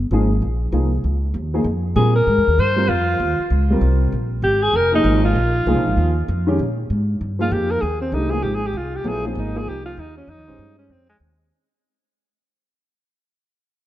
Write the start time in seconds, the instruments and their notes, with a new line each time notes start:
Already playing: upright bass G1
0.11 upright bass G#1, upright piano F3 A#3 D#4 G#4
0.42 upright bass A#1
0.72 upright bass C2, upright piano F3 A#3 D#4 G#4
1.04 upright bass C#2
1.34 upright bass D#2
1.54 upright piano F3 A#3 D#4 G#4
1.64 upright bass F2
1.96 upright bass A#2, upright piano G3 C4 F4 A#4, alto saxophone G#4
2.16 alto saxophone A#4
2.27 upright bass G#2
2.38 upright bass F2
2.48 upright bass D#2
2.58 upright bass G2, alto saxophone C5
2.76 upright piano G3 C4 F4 A#4
2.88 upright bass F2, alto saxophone F4
3.20 upright bass D#2
3.39 muted upright bass stroke
3.50 upright bass C#2
3.70 upright piano G3 C4 F4 A#4
3.81 upright bass C2
4.12 upright bass A#1
4.42 upright bass G#1, alto saxophone G4
4.63 alto saxophone G#4
4.74 upright bass F1, alto saxophone A#4
4.92 upright piano F3 A#3 D#4 G#4, alto saxophone D#4
5.04 upright bass G#1
5.25 alto saxophone F4
5.36 upright bass A#1
5.66 upright bass C2, upright piano F3 A#3 D#4 G#4
5.76 upright bass A#1
5.87 upright bass G#1
5.97 upright bass D#2
6.28 upright bass F2
6.47 upright piano D#3 G#3 C#4 G4
6.59 upright bass A#2
6.90 upright bass G#2
7.21 upright bass G2
7.39 upright piano F3 A#3 D#4 G#4, alto saxophone F4
7.51 upright bass F2, alto saxophone G4
7.71 alto saxophone A#4
7.81 upright bass D#2, alto saxophone G#4
8.01 alto saxophone C4
8.12 upright bass C2, upright piano E3 A3 D4 G4, alto saxophone D#4
8.30 upright piano F3 A#3 D#4 G#4, alto saxophone G#4
8.43 upright bass G#1, alto saxophone G4
8.55 alto saxophone G#4
8.66 alto saxophone G4
8.73 upright bass C2, alto saxophone F4
8.96 alto saxophone G4
9.04 upright bass A#1, upright piano F#3 B3 E4 A4, alto saxophone G#4
9.24 upright piano F3 A#3 D#4 G#4, alto saxophone C4
9.35 upright bass G#1, alto saxophone D#4
9.55 upright piano F3 A#3 D#4 G#4, alto saxophone G#4
9.66 upright bass C2, alto saxophone G4
9.86 alto saxophone F4
9.97 upright bass D#2, alto saxophone D#4
10.17 alto saxophone C#4
10.28 upright bass F2, alto saxophone D#4
10.38 upright bass D#2
10.47 upright bass A#1, upright piano G#3 C#4 G4 C5
10.58 upright bass G2
10.78 alto saxophone C#4
10.89 upright bass F2, alto saxophone C4
11.09 alto saxophone G#3
11.20 upright bass D#2